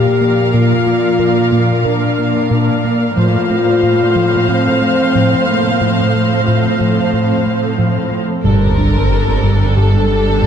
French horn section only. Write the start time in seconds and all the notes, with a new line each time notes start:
Already playing: G4
0.53 F4
1.85 D4
2.51 D4
3.18 F4
4.49 C4
5.47 A#3
5.81 A3
8.44 A#3 D4
9.76 A3 D4